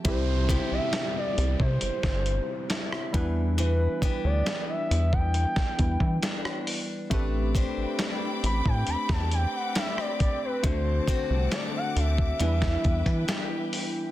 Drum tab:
HH |x-x-x-x-x-x-x-x-|x-x-x-x-x-x-x-o-|x-x-x-x-x-x-x-x-|x-x-x-x-x-xxx-o-|
SD |----o----o--or--|----o----o--or--|----o----o--or--|----o----o--o---|
BD |o-o----o-o----o-|--o----o-ooo----|o-o----o-o----o-|o-o----o-ooo----|